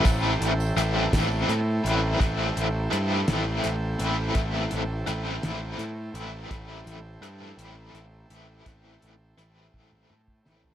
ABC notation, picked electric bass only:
X:1
M:6/8
L:1/8
Q:3/8=56
K:Am
V:1 name="Picked electric bass" clef=bass
A,,, A,,, A,,, A,,, A,, A,,, | A,,, A,,, G,, A,,, A,,, A,,, | A,,, A,,, A,,, A,,, A,, A,,, | A,,, A,,, G,, A,,, A,,, A,,, |
A,,, A,,, A,,, A,,, A,, A,,, |]